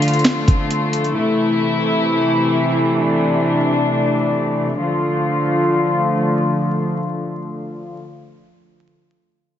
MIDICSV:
0, 0, Header, 1, 3, 480
1, 0, Start_track
1, 0, Key_signature, -1, "minor"
1, 0, Tempo, 500000
1, 9206, End_track
2, 0, Start_track
2, 0, Title_t, "String section"
2, 0, Program_c, 0, 48
2, 0, Note_on_c, 0, 50, 83
2, 0, Note_on_c, 0, 53, 74
2, 0, Note_on_c, 0, 57, 77
2, 0, Note_on_c, 0, 65, 89
2, 1077, Note_off_c, 0, 50, 0
2, 1077, Note_off_c, 0, 53, 0
2, 1077, Note_off_c, 0, 65, 0
2, 1112, Note_on_c, 0, 48, 80
2, 1112, Note_on_c, 0, 64, 91
2, 1113, Note_on_c, 0, 52, 75
2, 2840, Note_off_c, 0, 64, 0
2, 2857, Note_on_c, 0, 62, 88
2, 4564, Note_off_c, 0, 57, 0
2, 4568, Note_off_c, 0, 48, 0
2, 4568, Note_off_c, 0, 52, 0
2, 4585, Note_off_c, 0, 62, 0
2, 4602, Note_on_c, 0, 50, 79
2, 4603, Note_on_c, 0, 53, 73
2, 4603, Note_on_c, 0, 57, 74
2, 4603, Note_on_c, 0, 65, 89
2, 7616, Note_off_c, 0, 50, 0
2, 7616, Note_off_c, 0, 57, 0
2, 7617, Note_off_c, 0, 53, 0
2, 7617, Note_off_c, 0, 65, 0
2, 9206, End_track
3, 0, Start_track
3, 0, Title_t, "Drums"
3, 21, Note_on_c, 9, 42, 79
3, 75, Note_off_c, 9, 42, 0
3, 75, Note_on_c, 9, 42, 69
3, 130, Note_off_c, 9, 42, 0
3, 130, Note_on_c, 9, 42, 56
3, 185, Note_off_c, 9, 42, 0
3, 185, Note_on_c, 9, 42, 45
3, 239, Note_on_c, 9, 38, 108
3, 241, Note_off_c, 9, 42, 0
3, 241, Note_on_c, 9, 42, 83
3, 243, Note_on_c, 9, 39, 82
3, 335, Note_off_c, 9, 38, 0
3, 337, Note_off_c, 9, 42, 0
3, 339, Note_off_c, 9, 39, 0
3, 458, Note_on_c, 9, 36, 97
3, 461, Note_on_c, 9, 42, 88
3, 554, Note_off_c, 9, 36, 0
3, 557, Note_off_c, 9, 42, 0
3, 677, Note_on_c, 9, 42, 72
3, 773, Note_off_c, 9, 42, 0
3, 894, Note_on_c, 9, 42, 76
3, 990, Note_off_c, 9, 42, 0
3, 1003, Note_on_c, 9, 42, 42
3, 1099, Note_off_c, 9, 42, 0
3, 9206, End_track
0, 0, End_of_file